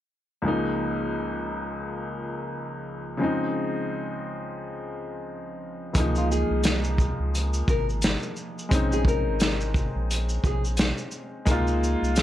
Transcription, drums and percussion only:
5.95 kick, closed hi-hat, shaker
6.15 shaker
6.32 shaker
6.64 snare, closed hi-hat, shaker
6.84 shaker
6.98 kick, shaker
7.35 closed hi-hat, shaker
7.54 shaker
7.68 kick, shaker
7.89 shaker
8.02 snare, closed hi-hat, shaker
8.23 shaker
8.36 shaker
8.59 shaker
8.71 kick, closed hi-hat, shaker
8.92 shaker
9.05 kick, shaker
9.40 snare, closed hi-hat, shaker
9.61 shaker
9.74 kick, shaker
10.11 closed hi-hat, shaker
10.29 shaker
10.44 kick, shaker
10.65 shaker
10.77 snare, closed hi-hat, shaker
10.98 shaker
11.11 shaker
11.47 kick, closed hi-hat, shaker
11.67 shaker
11.84 shaker
12.04 shaker
12.16 snare, closed hi-hat, shaker

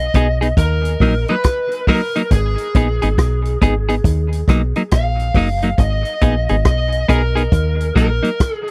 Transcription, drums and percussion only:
0.14 kick, closed hi-hat
0.42 closed hi-hat
0.57 kick, closed hi-hat
0.85 closed hi-hat
1.00 kick, open hi-hat
1.28 closed hi-hat
1.44 kick, cross-stick, closed hi-hat
1.72 closed hi-hat
1.87 kick, open hi-hat
2.16 closed hi-hat
2.31 kick, closed hi-hat
2.58 closed hi-hat
2.75 kick, closed hi-hat
3.02 closed hi-hat
3.18 kick, cross-stick, closed hi-hat
3.45 closed hi-hat
3.62 kick, closed hi-hat
3.89 closed hi-hat
4.04 kick, closed hi-hat
4.33 closed hi-hat
4.48 kick, cross-stick, closed hi-hat
4.76 closed hi-hat
4.91 kick, cross-stick, closed hi-hat
5.20 closed hi-hat
5.34 kick, open hi-hat
5.62 closed hi-hat
5.78 kick, closed hi-hat
6.05 closed hi-hat
6.21 kick, closed hi-hat
6.49 closed hi-hat
6.65 kick, cross-stick, closed hi-hat
6.92 closed hi-hat
7.09 kick, closed hi-hat
7.37 closed hi-hat
7.52 kick, closed hi-hat
7.80 closed hi-hat
7.96 kick, closed hi-hat
8.24 closed hi-hat
8.40 kick, cross-stick, closed hi-hat
8.68 closed hi-hat

